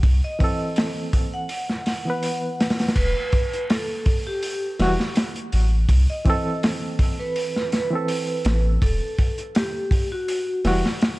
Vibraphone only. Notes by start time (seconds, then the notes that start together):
0.24 D#5
1.34 F#5
1.87 F#5
2.97 B4
3.70 A4
4.27 G4
6.10 D#5
7.19 B4
7.73 B4
8.83 A4
9.56 G4
10.12 F#4